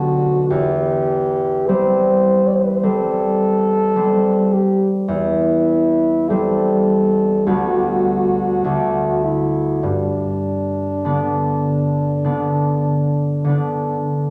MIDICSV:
0, 0, Header, 1, 3, 480
1, 0, Start_track
1, 0, Key_signature, 1, "major"
1, 0, Tempo, 1156069
1, 209, Time_signature, 4, 2, 24, 8
1, 1177, Tempo, 1127820
1, 2137, Tempo, 1185771
1, 4057, Tempo, 1209677
1, 5830, End_track
2, 0, Start_track
2, 0, Title_t, "French horn"
2, 0, Program_c, 0, 60
2, 0, Note_on_c, 0, 66, 65
2, 204, Note_off_c, 0, 66, 0
2, 207, Note_on_c, 0, 67, 67
2, 699, Note_on_c, 0, 72, 72
2, 705, Note_off_c, 0, 67, 0
2, 1027, Note_on_c, 0, 74, 51
2, 1033, Note_off_c, 0, 72, 0
2, 1066, Note_on_c, 0, 72, 55
2, 1072, Note_off_c, 0, 74, 0
2, 1102, Note_on_c, 0, 71, 56
2, 1108, Note_off_c, 0, 72, 0
2, 1146, Note_on_c, 0, 72, 57
2, 1152, Note_off_c, 0, 71, 0
2, 1182, Note_on_c, 0, 69, 82
2, 1188, Note_off_c, 0, 72, 0
2, 1900, Note_on_c, 0, 67, 63
2, 1906, Note_off_c, 0, 69, 0
2, 2054, Note_off_c, 0, 67, 0
2, 2141, Note_on_c, 0, 64, 66
2, 2626, Note_on_c, 0, 69, 67
2, 2632, Note_off_c, 0, 64, 0
2, 3100, Note_on_c, 0, 66, 75
2, 3106, Note_off_c, 0, 69, 0
2, 3817, Note_on_c, 0, 64, 55
2, 3823, Note_off_c, 0, 66, 0
2, 4055, Note_off_c, 0, 64, 0
2, 4057, Note_on_c, 0, 62, 56
2, 5722, Note_off_c, 0, 62, 0
2, 5830, End_track
3, 0, Start_track
3, 0, Title_t, "Harp"
3, 0, Program_c, 1, 46
3, 0, Note_on_c, 1, 35, 46
3, 0, Note_on_c, 1, 50, 34
3, 0, Note_on_c, 1, 59, 32
3, 0, Note_on_c, 1, 62, 37
3, 209, Note_on_c, 1, 40, 46
3, 227, Note_off_c, 1, 50, 0
3, 228, Note_off_c, 1, 35, 0
3, 228, Note_off_c, 1, 59, 0
3, 229, Note_off_c, 1, 62, 0
3, 700, Note_on_c, 1, 55, 35
3, 702, Note_on_c, 1, 60, 40
3, 1170, Note_off_c, 1, 55, 0
3, 1173, Note_off_c, 1, 60, 0
3, 1175, Note_on_c, 1, 55, 35
3, 1178, Note_on_c, 1, 60, 37
3, 1650, Note_off_c, 1, 55, 0
3, 1653, Note_off_c, 1, 60, 0
3, 1655, Note_on_c, 1, 55, 32
3, 1658, Note_on_c, 1, 60, 36
3, 1845, Note_off_c, 1, 40, 0
3, 2133, Note_on_c, 1, 40, 41
3, 2623, Note_off_c, 1, 55, 0
3, 2624, Note_off_c, 1, 60, 0
3, 2626, Note_on_c, 1, 55, 36
3, 2630, Note_on_c, 1, 60, 36
3, 3094, Note_off_c, 1, 55, 0
3, 3098, Note_on_c, 1, 38, 46
3, 3100, Note_on_c, 1, 55, 29
3, 3102, Note_on_c, 1, 59, 33
3, 3104, Note_on_c, 1, 62, 29
3, 3115, Note_off_c, 1, 40, 0
3, 3118, Note_off_c, 1, 60, 0
3, 3571, Note_off_c, 1, 38, 0
3, 3575, Note_on_c, 1, 38, 38
3, 3576, Note_off_c, 1, 62, 0
3, 3578, Note_on_c, 1, 50, 28
3, 3579, Note_on_c, 1, 57, 29
3, 3582, Note_on_c, 1, 62, 32
3, 3595, Note_off_c, 1, 55, 0
3, 3597, Note_off_c, 1, 59, 0
3, 4056, Note_on_c, 1, 43, 40
3, 4077, Note_off_c, 1, 38, 0
3, 4078, Note_off_c, 1, 50, 0
3, 4079, Note_off_c, 1, 57, 0
3, 4538, Note_off_c, 1, 62, 0
3, 4538, Note_on_c, 1, 50, 33
3, 4540, Note_on_c, 1, 59, 34
3, 4542, Note_on_c, 1, 62, 35
3, 5008, Note_off_c, 1, 50, 0
3, 5010, Note_off_c, 1, 59, 0
3, 5011, Note_off_c, 1, 62, 0
3, 5013, Note_on_c, 1, 50, 32
3, 5013, Note_on_c, 1, 59, 28
3, 5017, Note_on_c, 1, 62, 33
3, 5488, Note_off_c, 1, 50, 0
3, 5489, Note_on_c, 1, 50, 32
3, 5493, Note_off_c, 1, 59, 0
3, 5495, Note_off_c, 1, 62, 0
3, 5498, Note_on_c, 1, 59, 29
3, 5508, Note_on_c, 1, 62, 34
3, 5603, Note_off_c, 1, 43, 0
3, 5830, Note_off_c, 1, 50, 0
3, 5830, Note_off_c, 1, 59, 0
3, 5830, Note_off_c, 1, 62, 0
3, 5830, End_track
0, 0, End_of_file